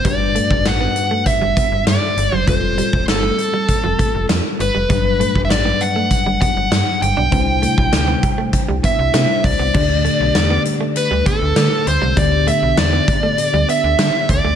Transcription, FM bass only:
X:1
M:4/4
L:1/16
Q:1/4=99
K:G
V:1 name="FM bass" clef=bass
G,,,3 F,,, A,,,2 z3 G,,, z G,,, G,, z G,,, F,,, | =F,,,3 E,,, G,,,2 z3 F,,, z F,,, =F,, z G,,, F,,, | G,,,3 F,,, A,,,2 z3 G,,, z G,,, G,, z G,,, B,,, | C,,3 B,,, D,,2 z3 C,, z C,, C, z C,, C,, |
D,,3 B,,, E,,2 z3 D,, z D,, D, z D,, C,, | D,,3 B,,, E,,2 z3 D,, z D,, D, z D,, D,, |]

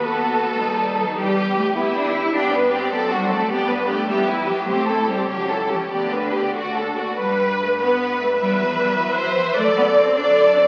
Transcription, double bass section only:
X:1
M:6/8
L:1/8
Q:3/8=102
K:Em
V:1 name="Double bass section" clef=bass
^D,,6 | E,,6 | [K:G] G,,3 F,,3 | G,,3 E,,3 |
C,,3 ^C,,3 | D,,3 D,,3 | G,,6 | E,,6 |
F,,6 |]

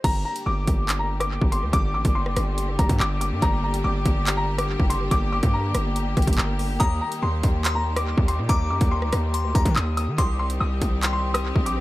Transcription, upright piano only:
X:1
M:4/4
L:1/16
Q:1/4=142
K:Gm
V:1 name="Upright piano"
b2 b2 d'4- d' b2 d'3 c'2 | d'2 d'2 c'6 b2 d'2 d'2 | b2 b2 d'4- d' b2 d'3 c'2 | d'2 d'2 b12 |
b2 b2 c'4- c' b2 d'3 c'2 | d'2 d'2 c'6 b2 e'2 e'2 | c'2 c'2 e'4- e' c'2 e'3 d'2 |]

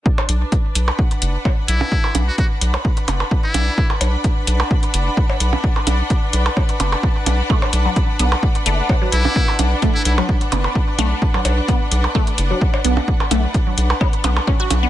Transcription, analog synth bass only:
X:1
M:4/4
L:1/8
Q:"Swing 16ths" 1/4=129
K:Bm
V:1 name="Analog synth bass" clef=bass
z B,,, z B,,, z F,,, z B,,, | z B,,, z B,,, z F,,, z B,,, | z B,,, z B,,, z F,,, z B,,, | z B,,, z B,,, z F,,, z B,,, |
z B,,, z B,,, z F,,, z B,,, | z B,,, z B,,, z F,,, z B,,, | z B,,, z B,,, z F,,, z B,,, | z B,,, z B,,, z B,,, z B,,, |]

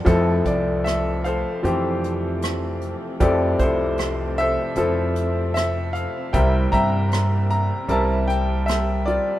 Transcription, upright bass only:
X:1
M:4/4
L:1/8
Q:1/4=77
K:F
V:1 name="Upright bass" clef=bass
F,, C,,3 F,,4 | F,, C,,3 F,,4 | C,, G,,3 C,,4 |]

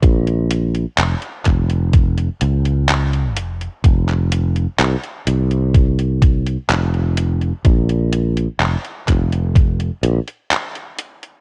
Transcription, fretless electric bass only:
X:1
M:4/4
L:1/8
Q:1/4=63
K:Bblyd
V:1 name="Fretless electric bass" clef=bass
B,,,2 F,,, F,,,2 _D,,2 F,,, | F,,,2 C,, C,,3 F,,,2 | B,,,2 F,,, F,,,2 B,,, z2 |]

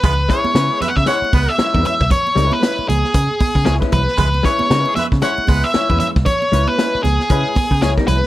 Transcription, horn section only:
X:1
M:4/4
L:1/16
Q:"Swing 16ths" 1/4=116
K:C#m
V:1 name="Horn section"
[G,EB] z [E,CG] z2 [E,CG] [G,EB] z [G,Ec] z [G,EB]2 z4 | z16 | [G,EB] z [E,CG] z2 [E,CG] [G,EB] z [G,Ec] z [G,EB]2 z4 | z16 |]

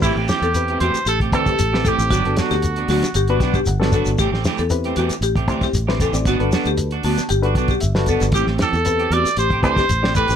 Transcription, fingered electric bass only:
X:1
M:4/4
L:1/16
Q:1/4=116
K:Ador
V:1 name="Fingered electric bass" clef=bass
A,,, A,,, z E,,3 E,, z A,,,2 D,,2 A,,,3 A,,, | G,,, G,,, z D,,3 D,, z G,,,2 B,,,2 G,,,3 G,,, | A,,, A,,, z E,,3 E,, z A,,,2 D,,2 A,,,3 A,,, | G,,, G,,, z D,,3 D,, z G,,,2 B,,,2 G,,,3 G,,, |
A,,, A,,, z E,,3 E,, z A,,,2 D,,2 A,,,3 A,,, |]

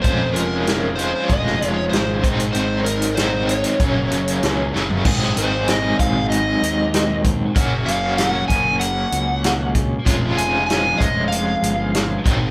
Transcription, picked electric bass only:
X:1
M:4/4
L:1/8
Q:1/4=96
K:Abmix
V:1 name="Picked electric bass" clef=bass
F,,,4 F,,, F,,, A,,, A,,, | A,,,4 G,,, G,,, D,, G,,, | A,,, A,,,2 A,,,2 E,,3 | G,,, G,,,2 G,,,2 D,,3 |
F,,, F,,,2 F,,,2 =G,,,2 A,,, |]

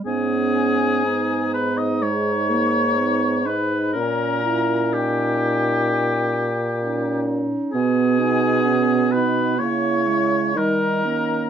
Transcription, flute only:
X:1
M:4/4
L:1/16
Q:1/4=62
K:G#m
V:1 name="Flute"
g6 b d' c'6 b2 | a4 =g8- g2 z2 | g6 b2 c'4 a4 |]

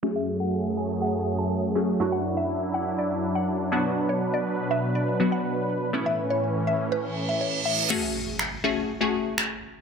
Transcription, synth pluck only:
X:1
M:4/4
L:1/16
Q:1/4=122
K:F#m
V:1 name="Synth pluck"
z e z f2 z g z f z2 a2 z3 | z f z e2 z f z d z2 f z4 | z c z d2 z e z d z2 f2 z3 | z e z c2 z e z B z2 e c z e z |
z16 |]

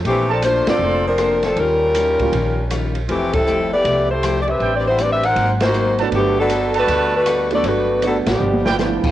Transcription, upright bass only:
X:1
M:4/4
L:1/8
Q:"Swing" 1/4=158
K:G
V:1 name="Upright bass" clef=bass
_B,,,3 z =F,,,4 | _E,,3 _D,, _B,,,4 | =F,,,4 C,,4 | A,,,4 _A,,,4 |
G,,,4 D,,4 | G,,,3 _A,,, G,,,3 z |]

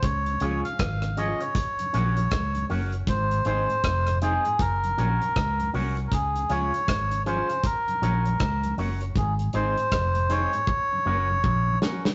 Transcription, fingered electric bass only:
X:1
M:4/4
L:1/16
Q:"Swing 16ths" 1/4=79
K:Gblyd
V:1 name="Fingered electric bass" clef=bass
D,,2 D,, z A,,,3 z3 B,,,2 D,,2 G,,,2 | A,,,2 A,,, z F,,,3 z G,,,2 B,,, z D,,2 C,,2 | D,,2 D,, z A,,,3 z3 B,,,2 D,,2 G,,,2 | A,,,2 A,,, z F,,,3 z3 G,,,2 B,,,2 z2 |]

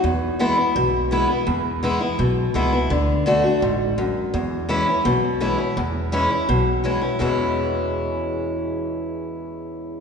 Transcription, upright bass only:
X:1
M:4/4
L:1/8
Q:1/4=168
K:E
V:1 name="Upright bass" clef=bass
E,,4 B,,,4 | E,,4 B,,,2 C,,2 | =D,,4 A,,,4 | E,,4 B,,,4 |
E,,4 B,,,4 | E,,8- | E,,8 |]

